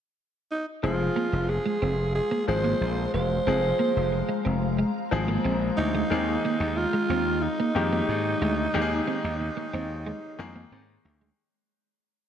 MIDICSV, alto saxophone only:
0, 0, Header, 1, 2, 480
1, 0, Start_track
1, 0, Key_signature, -4, "minor"
1, 0, Tempo, 659341
1, 606, Time_signature, 4, 2, 24, 8
1, 8943, End_track
2, 0, Start_track
2, 0, Title_t, "Alto saxophone"
2, 0, Program_c, 0, 65
2, 374, Note_on_c, 0, 63, 72
2, 480, Note_off_c, 0, 63, 0
2, 612, Note_on_c, 0, 65, 83
2, 1087, Note_on_c, 0, 68, 82
2, 1098, Note_off_c, 0, 65, 0
2, 1561, Note_off_c, 0, 68, 0
2, 1565, Note_on_c, 0, 68, 93
2, 1789, Note_off_c, 0, 68, 0
2, 1807, Note_on_c, 0, 72, 105
2, 2257, Note_off_c, 0, 72, 0
2, 2286, Note_on_c, 0, 72, 96
2, 3217, Note_off_c, 0, 72, 0
2, 4202, Note_on_c, 0, 63, 100
2, 4930, Note_on_c, 0, 65, 94
2, 4941, Note_off_c, 0, 63, 0
2, 5405, Note_on_c, 0, 63, 92
2, 5416, Note_off_c, 0, 65, 0
2, 7805, Note_off_c, 0, 63, 0
2, 8943, End_track
0, 0, End_of_file